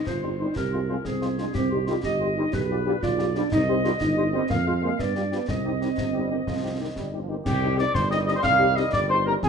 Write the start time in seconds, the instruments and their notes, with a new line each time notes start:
0.06 tuba G1, euphonium F4, woodwind section C5, concert bass drum, snare
0.23 french horn section G3 C4 D#4, cornet C5
0.39 trombone section D#3 G3, french horn section G3 C4 D#4, euphonium D#4, cornet C5
0.56 tuba C2, euphonium G4, woodwind section A#4, concert bass drum, snare
0.72 french horn section G#3 C4 F4, cornet C5
0.89 trombone section F3 G#3, french horn section G#3 C4 F4, euphonium F4, cornet C5
1.04 tuba C2, euphonium C4, woodwind section G#4, concert bass drum, snare
1.22 french horn section G#3 C4 F4, cornet C5, snare
1.38 trombone section F3 G#3, french horn section G#3 C4 F4, euphonium D4, cornet C5, snare
1.52 tuba C2, euphonium C4, woodwind section G4, concert bass drum, snare
1.71 french horn section G3 D#4 G4, euphonium G4, cornet C5
1.86 trombone section D#3 G3, french horn section G3 D#4 G4, euphonium F4, cornet C5, snare
2.03 tuba G1, euphonium G4, woodwind section D#5, concert bass drum, snare
2.20 french horn section G3 D#4 G4, cornet C5
2.36 trombone section D#3 G3, french horn section G3 D#4 G4, euphonium D#4, cornet C5
2.51 tuba B1, euphonium G4, woodwind section B4, concert bass drum, snare
2.70 french horn section G3 F4 G4, cornet D5
2.85 trombone section F3 G3, french horn section G3 F4 G4, euphonium D4, cornet D5
3.02 tuba B1, euphonium F4, woodwind section D5, concert bass drum, snare
3.19 french horn section G3 F4 G4, cornet D5, snare
3.35 trombone section F3 G3, french horn section G3 F4 G4, euphonium D4, cornet D5, snare
3.52 tuba C2, euphonium D#4, woodwind section D#5, concert bass drum, snare, crash
3.67 french horn section G3 D#4 G4, euphonium C4, cornet C5
3.84 trombone section D#3 G3, french horn section G3 D#4 G4, euphonium F4, cornet C5, snare
4.01 tuba G1, euphonium D#4, concert bass drum, snare
4.17 french horn section G3 D#4 G4, cornet C5
4.33 trombone section D#3 G3, french horn section G3 D#4 G4, euphonium C4, cornet C5
4.49 tuba F2, euphonium A#3, woodwind section F5, concert bass drum, snare
4.66 euphonium G#3, french horn section G#3 F4, cornet C5
4.82 trombone section F3 G#3, french horn section G#3 F4, euphonium A#3, cornet C5
4.99 tuba G2, euphonium B3, woodwind section D5, concert bass drum, snare
5.15 french horn section G3 D4 F4, euphonium G3, cornet G4, snare
5.31 trombone section F3 G3, french horn section G3 D4 F4, euphonium B3, cornet G4, snare
5.48 tuba C2, euphonium C4, woodwind section D#5, concert bass drum, snare
5.65 french horn section G3 C4 D#4, cornet G4
5.80 trombone section D#3 G3, french horn section G3 C4 D#4, cornet G4, snare
5.97 tuba G1, trombone section C3, concert bass drum, snare
6.13 french horn section G3 C4 D#4, trombone section G3, cornet G4
6.30 trombone section D#3, french horn section G3 C4 D#4, cornet G4
6.47 tuba C2, trombone section F3, concert bass drum, snare
6.63 french horn section G3 C4 D#4, cornet G4
6.80 trombone section D#3, french horn section G3 C4 D#4, cornet G4
6.95 tuba G1, trombone section G3, concert bass drum, snare
7.13 french horn section G3 C4 D#4, cornet G4
7.21 trombone section F3
7.28 trombone section D#3, french horn section G3 C4 D#4, cornet G4
7.45 tuba C2, trombone section D#3 G3, cornet G4, woodwind section G4, piccolo G5, concert bass drum, snare, crash
7.62 french horn section C4 D#4 G4
7.77 french horn section C4 D#4 G4, woodwind section D5, cornet D5, piccolo D6, snare
7.94 tuba G1, woodwind section C5, cornet C5, piccolo C6, concert bass drum, snare
8.10 french horn section C4 D#4 G4, woodwind section D#5, cornet D#5, piccolo D#6, snare
8.26 french horn section C4 D#4 G4, cornet D#5, woodwind section D#5, piccolo D#6, snare
8.35 cornet C5, woodwind section C5, piccolo C6
8.43 tuba C2, cornet F5, woodwind section F5, piccolo F6, concert bass drum, snare
8.59 french horn section C4 D#4 G4
8.76 french horn section C4 D#4 G4, cornet D#5, woodwind section D#5, piccolo D#6, snare
8.92 tuba G1, cornet D5, woodwind section D5, piccolo D6, concert bass drum, snare
9.09 french horn section C4 D#4 G4, woodwind section C5, cornet C5, piccolo C6
9.26 french horn section C4 D#4 G4, woodwind section A#4, cornet A#4, piccolo A#5
9.42 tuba F2, trombone section F3 C4, woodwind section G#4, cornet G#4, piccolo G#5, concert bass drum, snare